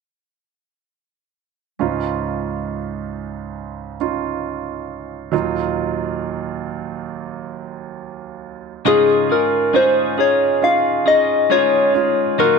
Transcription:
1.79 5.29 C#2 soft
1.79 5.29 G#2 soft
1.79 3.96 C#4 soft
1.79 3.97 D#4 soft
1.79 3.97 F4 soft
4.00 5.33 C#4 soft
4.00 5.31 D#4 soft
4.00 5.32 F4 soft
5.32 8.82 D#2 medium
5.32 8.82 A#2 soft
5.32 8.81 F#3 medium
5.32 8.82 D#4 soft
5.32 8.82 F4 medium
8.85 10.14 G#2 soft
8.85 9.30 C#3 medium
8.85 9.30 G#3 medium
8.85 9.27 C#4 medium
8.85 9.28 D#4 medium
8.85 9.30 D#4 medium
8.85 9.28 F4 medium
8.85 9.29 F4 medium
8.85 9.28 G#4 medium
8.85 9.33 G#4 medium
9.29 9.72 C#4 soft
9.29 9.72 D#4 soft
9.29 9.73 D#4 soft
9.29 9.72 F4 medium
9.29 9.74 F4 soft
9.29 9.74 G#4 soft
9.29 9.78 A#4 medium
9.73 10.18 G#3 soft
9.73 10.16 C#4 medium
9.73 10.16 D#4 medium
9.73 10.18 D#4 soft
9.73 10.16 F4 medium
9.73 10.18 F4 soft
9.73 10.17 G#4 soft
9.73 10.22 C5 medium
10.18 10.60 C#4 medium
10.18 10.60 D#4 medium
10.18 11.07 D#4 soft
10.18 11.06 F4 soft
10.18 11.05 G#4 soft
10.18 10.60 G#4 medium
10.18 10.65 C#5 medium
10.62 11.04 C#4 medium
10.62 11.04 D#4 soft
10.62 11.04 F4 medium
10.62 11.09 F5 medium
11.06 11.48 C#4 medium
11.06 11.48 D#4 soft
11.06 11.50 D#4 soft
11.06 11.50 F4 soft
11.06 11.50 G#4 soft
11.06 11.49 G#4 medium
11.06 11.53 D#5 medium
11.50 12.39 G#3 soft
11.50 11.92 C#4 medium
11.50 11.92 D#4 medium
11.50 12.39 D#4 soft
11.50 11.93 F4 medium
11.50 12.39 F4 soft
11.50 12.39 G#4 medium
11.50 12.39 C#5 loud
11.94 12.36 C#4 soft
11.94 12.36 D#4 soft
11.94 12.37 F4 medium
12.38 12.59 A#2 soft
12.38 12.59 D#3 medium
12.38 12.59 F#3 medium
12.38 12.59 D#4 medium
12.38 12.59 F4 medium
12.38 12.59 F#4 medium
12.38 12.59 A#4 medium

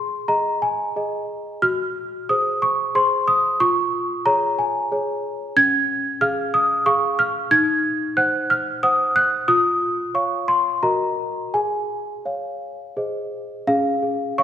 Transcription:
0.00 0.26 G#4 medium
0.00 0.28 C6 loud
0.28 0.92 G#4 soft
0.28 0.92 D#5 medium
0.28 0.62 A#5 medium
0.62 1.29 G#5 medium
0.96 1.59 G#4 soft
0.96 1.59 D#5 medium
1.62 2.27 F#4 medium
1.62 2.29 F6 loud
2.29 2.91 G#4 medium
2.29 2.91 C5 medium
2.29 2.62 D#6 medium
2.62 2.95 C#6 loud
2.95 3.56 G#4 medium
2.95 3.57 C5 medium
2.95 3.28 C6 loud
3.28 3.60 D#6 loud
3.60 4.24 F4 medium
3.60 4.26 C#6 loud
4.26 4.87 G#4 medium
4.26 4.88 C#5 medium
4.26 4.58 A#5 loud
4.59 5.24 G#5 medium
4.92 5.53 G#4 medium
4.92 5.53 C#5 medium
5.56 6.19 C#4 medium
5.56 6.21 G#6 loud
6.21 6.82 G#4 medium
6.21 6.82 F5 medium
6.21 6.53 F6 loud
6.54 6.86 D#6 loud
6.86 7.47 G#4 medium
6.86 7.47 F5 medium
6.86 7.18 C#6 loud
7.19 7.51 F6 loud
7.51 8.15 D#4 medium
7.51 8.17 G#6 loud
8.17 8.79 C5 medium
8.17 8.79 F#5 medium
8.17 8.50 F#6 loud
8.50 8.83 F6 loud
8.83 9.44 C5 medium
8.83 9.45 F#5 medium
8.83 9.16 D#6 loud
9.16 9.48 F#6 loud
9.48 10.13 F4 medium
9.48 10.14 D#6 loud
10.14 10.79 C#5 soft
10.14 10.79 F5 medium
10.14 10.49 C#6 medium
10.48 10.83 C6 medium
10.83 11.52 F#4 medium
10.83 11.50 A#4 soft
10.83 11.50 D#5 soft
10.83 11.54 A#5 medium
11.54 12.23 G#4 medium
11.54 13.32 G#5 medium
12.25 12.93 C#5 soft
12.25 12.93 F5 medium
12.97 13.65 G#4 medium
12.97 13.63 C5 soft
12.97 13.64 D#5 soft
13.67 14.43 C#4 medium
13.67 14.01 G#4 medium
13.67 14.38 F5 medium
14.02 14.43 G#4 medium
14.38 14.43 C#5 medium
14.38 14.43 F5 medium
14.38 14.43 C#6 loud

